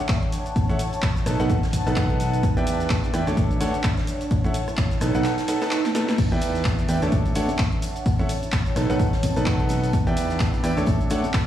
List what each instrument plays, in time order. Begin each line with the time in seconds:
Already playing: ambient pad D4 C#5 A5
0.08 kick, snare, clap, closed hi-hat, cabasa
0.22 closed hi-hat
0.32 closed hi-hat, open hi-hat, cabasa
0.46 closed hi-hat, cabasa
0.56 kick, closed hi-hat, open hi-hat, cabasa
0.69 fingered electric bass A1, grand piano E4 A4 C#5 F#5, closed hi-hat, cabasa
0.79 closed hi-hat, open hi-hat, cabasa
0.93 closed hi-hat, cabasa
1.02 kick, snare, clap, closed hi-hat, cabasa
1.16 snare, closed hi-hat, cabasa
1.26 fingered electric bass B1, ambient pad D#4, grand piano D#4 A4 B4 A5, cross-stick, snare, closed hi-hat, open hi-hat, cabasa
1.39 fingered electric bass B1, grand piano D#4 A4 B4 F#5, ambient pad B4, closed hi-hat, cabasa
1.48 ambient pad F#5, kick, closed hi-hat, cabasa
1.63 snare, closed hi-hat, cabasa
1.73 kick, open hi-hat, cabasa
1.87 fingered electric bass B1, grand piano D#4 A4 B4 A5, closed hi-hat, cabasa
1.96 fingered electric bass B1, grand piano D#4 A4 B4 F#5, kick, snare, clap, closed hi-hat, cabasa
2.10 closed hi-hat
2.20 snare, closed hi-hat, open hi-hat, cabasa
2.33 closed hi-hat, cabasa
2.43 ambient pad D4, kick, closed hi-hat, cabasa
2.57 fingered electric bass E2, grand piano E4 B4 D5 G5, closed hi-hat, cabasa
2.67 closed hi-hat, open hi-hat, cabasa
2.80 snare, closed hi-hat, cabasa
2.86 ambient pad E5, snare, clap
2.90 kick, closed hi-hat, cabasa
3.04 closed hi-hat, cabasa
3.14 fingered electric bass E2, grand piano E4 B4 D5 G5, cross-stick, closed hi-hat, open hi-hat, cabasa
3.27 fingered electric bass D2, grand piano D4 A4 C#5 A5, snare, closed hi-hat, cabasa
3.37 kick, closed hi-hat, cabasa
3.51 closed hi-hat, cabasa
3.61 fingered electric bass D2, grand piano D4 A4 C#5 F#5, snare, closed hi-hat, open hi-hat, cabasa
3.74 ambient pad C#5, closed hi-hat, cabasa
3.80 ambient pad A5, kick, clap, closed hi-hat
3.84 cabasa
3.97 snare, closed hi-hat
4.07 open hi-hat, cabasa
4.20 closed hi-hat, cabasa
4.31 kick, closed hi-hat, open hi-hat, cabasa
4.44 fingered electric bass A1, grand piano E4 A4 C#5 F#5, closed hi-hat, cabasa
4.54 closed hi-hat, open hi-hat, cabasa
4.68 cross-stick, closed hi-hat, cabasa
4.77 kick, snare, clap, closed hi-hat, cabasa
4.91 snare, closed hi-hat, cabasa
5.00 fingered electric bass B1, ambient pad D#4, grand piano D#4 A4 B4 A5, cross-stick, snare, closed hi-hat, open hi-hat, cabasa
5.15 fingered electric bass B1, grand piano D#4 A4 B4 F#5, closed hi-hat, cabasa
5.24 ambient pad B4, snare, clap, closed hi-hat, cabasa
5.38 snare, closed hi-hat, cabasa
5.48 grand piano D#4 A4 B4 F#5, snare, closed hi-hat, open hi-hat, cabasa
5.61 grand piano D#4 A4 B4 A5, snare, closed hi-hat, cabasa
5.71 snare, clap, closed hi-hat, cabasa
5.85 snare, closed hi-hat, cabasa
5.94 grand piano D#4 A4 B4 A5, snare, closed hi-hat, open hi-hat, cabasa
6.08 snare, closed hi-hat, cabasa
6.18 ambient pad D4, kick, closed hi-hat, tambourine, crash, cabasa
6.31 fingered electric bass E2, grand piano E4 B4 D5 G5, closed hi-hat, tambourine, cabasa
6.41 closed hi-hat, open hi-hat, tambourine, cabasa
6.55 snare, closed hi-hat, tambourine, cabasa
6.61 ambient pad E5, kick, clap, closed hi-hat
6.65 snare, tambourine, cabasa
6.79 closed hi-hat, tambourine, cabasa
6.88 fingered electric bass E2, grand piano E4 B4 D5 G5, closed hi-hat, open hi-hat, tambourine, cabasa
7.02 fingered electric bass D2, grand piano D4 A4 C#5 A5, snare, closed hi-hat, tambourine, cabasa
7.12 kick, closed hi-hat, tambourine, cabasa
7.26 closed hi-hat, tambourine, cabasa
7.35 fingered electric bass D2, grand piano D4 A4 C#5 F#5, closed hi-hat, open hi-hat, tambourine, cabasa
7.42 ambient pad C#5 A5
7.48 closed hi-hat, tambourine, high conga, cabasa
7.58 kick, snare, clap, closed hi-hat, tambourine, cabasa
7.72 closed hi-hat, tambourine
7.82 closed hi-hat, open hi-hat, tambourine, cabasa
7.96 closed hi-hat, tambourine, cabasa
8.06 kick, closed hi-hat, open hi-hat, tambourine, cabasa
8.19 fingered electric bass A1, grand piano E4 A4 C#5 F#5, closed hi-hat, tambourine, high conga, cabasa
8.29 closed hi-hat, open hi-hat, tambourine, cabasa
8.43 closed hi-hat, tambourine, cabasa
8.52 kick, snare, clap, closed hi-hat, tambourine, cabasa
8.65 snare, closed hi-hat, tambourine, cabasa
8.76 fingered electric bass B1, grand piano D#4 A4 B4 A5, ambient pad D#4, cross-stick, snare, closed hi-hat, open hi-hat, tambourine, cabasa
8.89 fingered electric bass B1, grand piano D#4 A4 B4 F#5, ambient pad B4, closed hi-hat, tambourine, cabasa
9.00 kick, closed hi-hat, tambourine, cabasa
9.13 snare, closed hi-hat, tambourine, cabasa
9.23 kick, open hi-hat, tambourine, high conga, cabasa
9.36 fingered electric bass B1, grand piano D#4 A4 B4 A5, closed hi-hat, tambourine, high conga, cabasa
9.46 fingered electric bass B1, grand piano D#4 A4 B4 F#5, kick, snare, clap, closed hi-hat, tambourine, cabasa
9.59 closed hi-hat, tambourine
9.69 snare, closed hi-hat, open hi-hat, tambourine, high conga, cabasa
9.83 closed hi-hat, tambourine, cabasa
9.93 ambient pad D4, kick, closed hi-hat, tambourine, cabasa
10.07 fingered electric bass E2, grand piano E4 B4 D5 G5, closed hi-hat, tambourine, cabasa
10.15 ambient pad E5, closed hi-hat, open hi-hat, tambourine, cabasa
10.30 snare, closed hi-hat, tambourine, cabasa
10.40 kick, snare, clap, closed hi-hat, tambourine, cabasa
10.54 closed hi-hat, tambourine, cabasa
10.63 fingered electric bass E2, grand piano E4 B4 D5 G5, cross-stick, closed hi-hat, open hi-hat, tambourine, cabasa
10.76 fingered electric bass D2, grand piano D4 A4 C#5 A5, snare, closed hi-hat, tambourine, cabasa
10.86 kick, closed hi-hat, tambourine, cabasa
11.01 ambient pad C#5 F#5, closed hi-hat, tambourine, cabasa
11.10 fingered electric bass D2, grand piano D4 A4 C#5 F#5, closed hi-hat, open hi-hat, tambourine, cabasa
11.24 closed hi-hat, tambourine, high conga, cabasa
11.30 ambient pad A5, kick, snare, clap, tambourine
11.34 closed hi-hat, cabasa